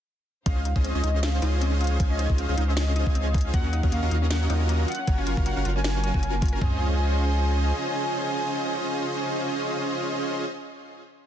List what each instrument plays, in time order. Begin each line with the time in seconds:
0.46 sub bass C#2, string section C#3 D#4 C5 F5, synth arpeggio sound C4, supersaw synth C#4 F4 G#4 C5 D#5, soft synth lead F5, kick, closed hi-hat
0.57 synth arpeggio sound C#4
0.65 synth arpeggio sound D#4, closed hi-hat
0.76 sub bass C#2, supersaw synth C#4 F4 G#4 C5 D#5, synth arpeggio sound C#4, kick
0.84 synth arpeggio sound C4, soft synth lead D#5, closed hi-hat
0.95 sub bass C#2, supersaw synth C#4 F4 G#4 C5 D#5, synth arpeggio sound C#4
1.04 sub bass C#2, supersaw synth C#4 F4 G#4 C5 D#5, synth arpeggio sound D#4, closed hi-hat
1.14 synth arpeggio sound C#4
1.23 synth arpeggio sound C4, soft synth lead F5, snare, closed hi-hat
1.34 synth arpeggio sound C#4
1.42 sub bass C#2, supersaw synth C#4 F4 G#4 C5 D#5, synth arpeggio sound D#4, closed hi-hat
1.53 synth arpeggio sound C#4
1.62 synth arpeggio sound C4, closed hi-hat
1.72 synth arpeggio sound C#4
1.81 synth arpeggio sound D#4, soft synth lead F5, closed hi-hat
1.84 closed hi-hat
1.87 closed hi-hat
1.91 synth arpeggio sound C#4
2.00 sub bass C#2, synth arpeggio sound C4, supersaw synth C#4 F4 G#4 C5 G#5, kick, closed hi-hat
2.10 synth arpeggio sound C#4, soft synth lead D#5
2.19 synth arpeggio sound D#4, closed hi-hat
2.30 sub bass C#2, synth arpeggio sound C#4, supersaw synth C#4 F4 G#4 C5 D#5, kick
2.38 synth arpeggio sound C4, soft synth lead F5, closed hi-hat
2.49 sub bass C#2, synth arpeggio sound C#4, supersaw synth C#4 F4 G#4 C5 D#5
2.57 sub bass C#2, supersaw synth C#4 F4 G#4 C5 D#5, synth arpeggio sound D#4, closed hi-hat
2.68 synth arpeggio sound C#4, soft synth lead D#5
2.77 synth arpeggio sound C4, snare, closed hi-hat
2.87 synth arpeggio sound C#4
2.96 synth arpeggio sound D#4, closed hi-hat
3.06 sub bass C#2, synth arpeggio sound C#4, supersaw synth C#4 F4 G#4 C5 G#5, kick
3.15 synth arpeggio sound C4, closed hi-hat
3.26 synth arpeggio sound C#4
3.34 synth arpeggio sound D#4, kick, closed hi-hat
3.38 closed hi-hat
3.41 closed hi-hat
3.45 synth arpeggio sound C#4
3.54 sub bass D#2, string section D#3 F#3 C#4, synth arpeggio sound A#3, supersaw synth C#4 F4 F#4 A#4 D#5, soft synth lead F#5, kick, closed hi-hat
3.64 synth arpeggio sound C#4
3.73 synth arpeggio sound D#4, closed hi-hat
3.83 sub bass D#2, supersaw synth C#4 F4 F#4 A#4 D#5, synth arpeggio sound C#4, kick
3.92 synth arpeggio sound A#3, soft synth lead F5, closed hi-hat
4.02 sub bass D#2, supersaw synth C#4 F4 F#4 A#4 D#5, synth arpeggio sound C#4
4.11 sub bass D#2, supersaw synth C#4 F4 F#4 A#4 D#5, synth arpeggio sound D#4, closed hi-hat
4.22 synth arpeggio sound C#4
4.31 synth arpeggio sound A#3, soft synth lead F#5, snare, closed hi-hat
4.41 synth arpeggio sound C#4
4.50 sub bass D#2, supersaw synth C#4 F4 F#4 A#4 D#5, synth arpeggio sound D#4, closed hi-hat
4.60 synth arpeggio sound C#4
4.69 synth arpeggio sound A#3, closed hi-hat
4.79 synth arpeggio sound C#4
4.88 string section F#3 A#4, synth arpeggio sound F4, soft synth lead F#5, closed hi-hat
4.92 closed hi-hat
4.95 closed hi-hat
4.99 synth arpeggio sound C#4
5.07 sub bass F#1, synth arpeggio sound A#3, supersaw synth C#4 F4 F#4 A#4 G#5, kick, closed hi-hat
5.18 synth arpeggio sound C#4, soft synth lead F5
5.27 synth arpeggio sound F4, closed hi-hat
5.37 sub bass F#1, synth arpeggio sound C#4, supersaw synth C#4 F4 F#4 A#4 F5, kick
5.46 synth arpeggio sound A#3, soft synth lead F#5, closed hi-hat
5.56 sub bass F#1, synth arpeggio sound C#4, supersaw synth C#4 F4 F#4 A#4 F5
5.65 sub bass F#1, supersaw synth C#4 F4 F#4 A#4 F5, synth arpeggio sound F4, closed hi-hat
5.76 synth arpeggio sound C#4, soft synth lead G#5
5.84 synth arpeggio sound A#3, snare, closed hi-hat
5.95 synth arpeggio sound C#4
6.04 synth arpeggio sound C#5, closed hi-hat
6.14 sub bass F#1, supersaw synth C#4 F4 F#4 A#4 G#5, synth arpeggio sound F#4, kick
6.23 synth arpeggio sound C#4, closed hi-hat
6.33 synth arpeggio sound A#3
6.42 synth arpeggio sound F4, kick, closed hi-hat
6.46 closed hi-hat
6.48 closed hi-hat
6.53 synth arpeggio sound A#4
6.61 sub bass C#2, string section C#3 F4 C5 D#5, synth arpeggio sound C4, supersaw synth C#4 F4 G#4 C5 D#5, soft synth lead G#5, kick, floor tom